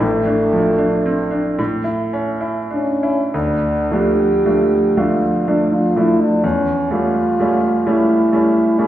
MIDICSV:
0, 0, Header, 1, 3, 480
1, 0, Start_track
1, 0, Key_signature, -1, "minor"
1, 0, Tempo, 1060071
1, 5, Time_signature, 6, 3, 24, 8
1, 965, Tempo, 1200000
1, 1445, Tempo, 1125704
1, 1925, Tempo, 1018676
1, 2405, Tempo, 964630
1, 2885, Tempo, 937500
1, 4131, End_track
2, 0, Start_track
2, 0, Title_t, "French horn"
2, 0, Program_c, 0, 60
2, 12, Note_on_c, 0, 57, 82
2, 709, Note_off_c, 0, 57, 0
2, 1202, Note_on_c, 0, 61, 77
2, 1431, Note_off_c, 0, 61, 0
2, 1451, Note_on_c, 0, 62, 81
2, 1699, Note_on_c, 0, 67, 86
2, 1705, Note_off_c, 0, 62, 0
2, 2172, Note_on_c, 0, 65, 72
2, 2179, Note_off_c, 0, 67, 0
2, 2410, Note_on_c, 0, 62, 68
2, 2418, Note_off_c, 0, 65, 0
2, 2532, Note_on_c, 0, 65, 76
2, 2540, Note_off_c, 0, 62, 0
2, 2650, Note_on_c, 0, 64, 69
2, 2658, Note_off_c, 0, 65, 0
2, 2768, Note_on_c, 0, 62, 72
2, 2775, Note_off_c, 0, 64, 0
2, 2887, Note_on_c, 0, 61, 83
2, 2895, Note_off_c, 0, 62, 0
2, 3129, Note_off_c, 0, 61, 0
2, 3131, Note_on_c, 0, 65, 85
2, 3615, Note_on_c, 0, 64, 73
2, 3623, Note_off_c, 0, 65, 0
2, 4086, Note_on_c, 0, 61, 86
2, 4094, Note_off_c, 0, 64, 0
2, 4131, Note_off_c, 0, 61, 0
2, 4131, End_track
3, 0, Start_track
3, 0, Title_t, "Grand piano"
3, 0, Program_c, 1, 0
3, 0, Control_c, 1, 64, 127
3, 0, Note_on_c, 1, 33, 54
3, 1, Note_on_c, 1, 45, 59
3, 13, Control_c, 1, 64, 0
3, 91, Control_c, 1, 64, 127
3, 117, Note_on_c, 1, 62, 46
3, 239, Note_on_c, 1, 53, 50
3, 312, Note_off_c, 1, 62, 0
3, 355, Note_on_c, 1, 62, 48
3, 431, Note_off_c, 1, 53, 0
3, 479, Note_on_c, 1, 60, 44
3, 549, Note_off_c, 1, 62, 0
3, 592, Note_on_c, 1, 62, 48
3, 599, Note_off_c, 1, 60, 0
3, 696, Note_off_c, 1, 33, 0
3, 699, Note_off_c, 1, 45, 0
3, 715, Note_off_c, 1, 62, 0
3, 718, Note_on_c, 1, 45, 63
3, 727, Control_c, 1, 64, 0
3, 815, Control_c, 1, 64, 127
3, 834, Note_on_c, 1, 64, 47
3, 965, Note_on_c, 1, 61, 51
3, 1029, Note_off_c, 1, 64, 0
3, 1076, Note_on_c, 1, 64, 49
3, 1150, Note_off_c, 1, 61, 0
3, 1195, Note_on_c, 1, 62, 43
3, 1271, Note_off_c, 1, 64, 0
3, 1320, Note_off_c, 1, 62, 0
3, 1325, Note_on_c, 1, 64, 47
3, 1428, Note_off_c, 1, 45, 0
3, 1447, Note_off_c, 1, 64, 0
3, 1448, Note_on_c, 1, 38, 52
3, 1455, Control_c, 1, 64, 0
3, 1536, Control_c, 1, 64, 127
3, 1690, Note_off_c, 1, 38, 0
3, 1693, Note_on_c, 1, 53, 39
3, 1693, Note_on_c, 1, 57, 36
3, 1699, Note_on_c, 1, 62, 43
3, 1907, Note_off_c, 1, 53, 0
3, 1907, Note_off_c, 1, 57, 0
3, 1910, Note_off_c, 1, 62, 0
3, 1923, Note_on_c, 1, 53, 39
3, 1925, Note_on_c, 1, 62, 43
3, 1927, Note_on_c, 1, 57, 39
3, 2148, Note_off_c, 1, 53, 0
3, 2148, Note_off_c, 1, 62, 0
3, 2149, Note_off_c, 1, 57, 0
3, 2168, Note_on_c, 1, 53, 43
3, 2168, Note_on_c, 1, 57, 41
3, 2169, Note_on_c, 1, 62, 46
3, 2386, Note_off_c, 1, 53, 0
3, 2387, Note_off_c, 1, 57, 0
3, 2387, Note_off_c, 1, 62, 0
3, 2404, Note_on_c, 1, 53, 39
3, 2406, Note_on_c, 1, 62, 43
3, 2407, Note_on_c, 1, 57, 39
3, 2628, Note_off_c, 1, 53, 0
3, 2629, Note_off_c, 1, 57, 0
3, 2629, Note_off_c, 1, 62, 0
3, 2647, Note_on_c, 1, 53, 40
3, 2652, Note_on_c, 1, 57, 40
3, 2654, Note_on_c, 1, 62, 43
3, 2864, Note_off_c, 1, 53, 0
3, 2867, Note_off_c, 1, 57, 0
3, 2868, Note_off_c, 1, 62, 0
3, 2884, Note_on_c, 1, 40, 53
3, 2892, Control_c, 1, 64, 0
3, 2985, Control_c, 1, 64, 127
3, 3120, Note_off_c, 1, 40, 0
3, 3125, Note_on_c, 1, 57, 37
3, 3126, Note_on_c, 1, 55, 40
3, 3128, Note_on_c, 1, 61, 43
3, 3352, Note_off_c, 1, 55, 0
3, 3352, Note_off_c, 1, 57, 0
3, 3353, Note_off_c, 1, 61, 0
3, 3374, Note_on_c, 1, 55, 44
3, 3377, Note_on_c, 1, 57, 42
3, 3381, Note_on_c, 1, 61, 48
3, 3594, Note_off_c, 1, 55, 0
3, 3596, Note_off_c, 1, 57, 0
3, 3598, Note_off_c, 1, 61, 0
3, 3613, Note_on_c, 1, 55, 45
3, 3616, Note_on_c, 1, 57, 45
3, 3618, Note_on_c, 1, 61, 45
3, 3828, Note_off_c, 1, 55, 0
3, 3829, Note_off_c, 1, 57, 0
3, 3830, Note_off_c, 1, 61, 0
3, 3850, Note_on_c, 1, 55, 44
3, 3853, Note_on_c, 1, 57, 44
3, 3857, Note_on_c, 1, 61, 46
3, 4065, Note_off_c, 1, 55, 0
3, 4066, Note_off_c, 1, 57, 0
3, 4068, Note_off_c, 1, 61, 0
3, 4085, Note_on_c, 1, 55, 47
3, 4088, Note_on_c, 1, 61, 47
3, 4090, Note_on_c, 1, 57, 43
3, 4131, Note_off_c, 1, 55, 0
3, 4131, Note_off_c, 1, 57, 0
3, 4131, Note_off_c, 1, 61, 0
3, 4131, End_track
0, 0, End_of_file